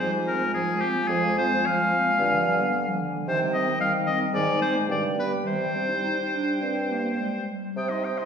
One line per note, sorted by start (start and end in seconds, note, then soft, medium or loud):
0.00 0.45 G#2 soft
0.00 2.21 F3 soft
0.00 0.16 F3 soft
0.00 0.12 C5 medium
0.00 3.29 G#5 soft
0.15 0.31 G#3 soft
0.27 0.44 C4 soft
0.27 0.54 A#4 medium
0.42 0.57 G#3 soft
0.54 0.71 F3 soft
0.54 0.83 G#4 medium
0.69 0.84 G#3 soft
0.81 0.99 C4 soft
0.81 1.09 G4 medium
0.97 1.10 G#3 soft
1.08 1.56 F2 medium
1.08 1.26 F3 soft
1.08 1.37 G#4 medium
1.24 1.39 G#3 soft
1.37 1.54 C4 soft
1.37 1.67 C5 medium
1.52 1.68 G#3 soft
1.66 1.81 F3 medium
1.66 3.02 F5 medium
1.80 1.94 G#3 soft
1.92 2.08 C4 soft
2.06 2.20 G#3 soft
2.19 2.65 G2 medium
2.19 3.29 D3 soft
2.19 2.35 D3 soft
2.34 2.48 F3 soft
2.47 2.62 G3 soft
2.60 2.75 B3 soft
2.74 2.89 G3 medium
2.88 3.04 F3 soft
3.02 3.18 D3 soft
3.16 3.28 F3 soft
3.27 3.72 C3 medium
3.27 4.90 D#3 medium
3.27 3.44 D#3 medium
3.27 3.40 C5 medium
3.27 4.35 G5 soft
3.43 3.56 G3 soft
3.54 3.69 C4 soft
3.54 3.80 D#5 medium
3.68 3.83 G3 soft
3.81 3.95 D#3 soft
3.81 3.93 F5 medium
3.94 4.09 G3 soft
4.07 4.23 C4 soft
4.07 4.19 D#5 medium
4.21 4.34 G3 soft
4.34 4.80 G#2 medium
4.34 4.50 D#3 soft
4.34 4.61 D5 medium
4.34 4.88 G#5 soft
4.49 4.64 G#3 soft
4.62 4.77 C4 soft
4.62 4.74 C5 medium
4.75 4.89 G#3 soft
4.88 5.36 G2 soft
4.88 5.05 D3 soft
4.88 7.48 G3 soft
4.88 5.04 D5 medium
4.88 7.44 G5 soft
5.03 5.19 G3 soft
5.18 5.33 B3 soft
5.18 5.32 B4 soft
5.31 5.45 G3 soft
5.45 5.94 C3 soft
5.45 5.61 D#3 soft
5.45 7.45 C5 medium
5.60 5.76 G3 soft
5.75 5.90 C4 soft
5.89 6.02 D#4 soft
6.03 6.16 D#4 medium
6.33 6.61 D4 soft
6.61 7.10 G2 soft
6.61 6.90 C4 soft
6.90 7.19 A#3 soft
7.19 7.32 G#3 soft
7.49 7.76 G3 soft
7.76 8.24 C3 medium
7.76 7.91 C4 soft
7.76 7.90 G5 soft
7.76 7.93 D#6 soft
7.89 8.05 D#4 soft
7.89 8.06 D#5 soft
7.89 8.07 C6 soft
8.04 8.19 C4 soft
8.04 8.19 G5 soft
8.04 8.20 D#6 soft
8.18 8.25 D#4 soft
8.18 8.25 D#5 soft
8.18 8.25 C6 soft